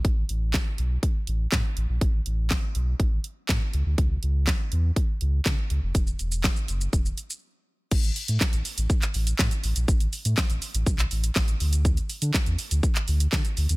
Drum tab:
CC |----------------|----------------|----------------|----------------|
HH |x-x-x-x-x-x-x-x-|x-x-x-x-x-x-x-x-|x-x-x-x-x-x-x-x-|x-x-x-x-x-x-----|
SH |----------------|----------------|----------------|xxxxxxxxxxxx----|
CP |----x-------x---|----x-------x---|----x-------x---|----x-----------|
SD |----o-------o---|----o-------o---|----o-------o---|----o-----------|
BD |o---o---o---o---|o---o---o---o---|o---o---o---o---|o---o---o-------|

CC |x---------------|----------------|----------------|
HH |-xox-xox-xox-xox|-xox-xox-xox-xox|-xox-xox-xox-xox|
SH |xxxxxxxxxxxxxxxx|xxxxxxxxxxxxxxxx|xxxxxxxxxxxxxxxx|
CP |----x----x--x---|----x----x--x---|----x----x--x---|
SD |----o-------o---|----o-------o---|----o-------o---|
BD |o---o---o---o---|o---o---o---o---|o---o---o---o---|